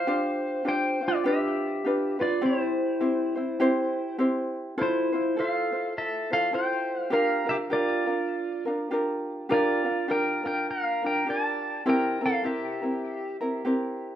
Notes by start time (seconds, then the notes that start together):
Already playing: C5 F5
0.07 D4 F4 G4 C5
0.65 D4 F4 G4 C5 G5
0.69 C5
1.01 D4 F4 C5
1.08 F4 D5
1.24 D4 F4 G4 B4 E5
1.84 D4 F4 G4 B4
2.19 D4 F4 B4 D5
2.41 C4 E4 G4 C5
2.46 C5
3.00 C4 E4 G4 C5
3.35 C4 E4 C5
3.60 C4 E4 G4 C5
4.18 C4 E4 G4 C5
4.78 E4 F4 A4 C5
4.83 C5
5.12 E4 F4 C5
5.36 E4 F4 A4 C5
5.40 F5
5.72 E4 F4 C5
5.98 A4 E5
6.30 E4 F4 A4 C5 F5
6.52 E4 F4 A4 C5 G5
7.02 F5
7.10 D4 F4 G4 A#4 F5
7.46 D4 F4 A#4 E5
7.51 G4
7.70 D4 F4 G4 A#4 D5
7.74 F4
8.06 D4 F4 A#4
8.65 D4 F4 A#4
8.91 D4 F4 G4 A#4
9.49 D4 F4 G4 A#4
9.54 D5
9.84 D4 F4 A#4
10.08 D4 F4 G4 A#4 G5
10.43 D4 F4 A#4 G5
10.71 A#4 F5
11.02 D4 F4 A#4
11.07 G5
11.26 D4 F4 G4 A#4 D5 A5
11.86 C4 E4 G4 A#4 G5
12.21 C4 E4 A#4
12.26 A4 F5
12.43 C4 E4 G4 A#4 E5
12.82 C4 E4 A#4
13.41 C4 E4 A#4
13.65 C4 E4 G4 A#4